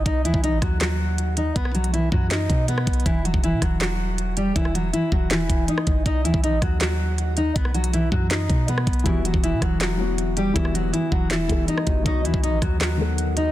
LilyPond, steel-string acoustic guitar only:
\new Staff \with { instrumentName = "Steel-string acoustic guitar" } { \time 4/4 \key e \minor \tempo 4 = 160 <dis' dis''>8 <e e'>8 <dis' dis''>8 <fis fis'>8 <fis fis'>4. <dis' dis''>8 | <b b'>8 <fis fis'>8 <e e'>8 <fis fis'>8 <dis' dis''>4 <b b'>4 | <e e'>8 <fis fis'>8 <e e'>8 <fis fis'>8 <fis fis'>4. <g g'>8 | <e e'>8 <fis fis'>8 <e e'>8 <fis fis'>8 <e e'>4 <dis' dis''>4 |
<dis' dis''>8 <e e'>8 <dis' dis''>8 <fis fis'>8 <fis fis'>4. <dis' dis''>8 | <b b'>8 <fis fis'>8 <e e'>8 <fis fis'>8 <dis' dis''>4 <b b'>4 | <e e'>8 <fis fis'>8 <e e'>8 <fis fis'>8 <fis fis'>4. <g g'>8 | <e e'>8 <fis fis'>8 <e e'>8 <fis fis'>8 <e e'>4 <dis' dis''>4 |
<dis' dis''>8 <e e'>8 <dis' dis''>8 <fis fis'>8 <fis fis'>4. <dis' dis''>8 | }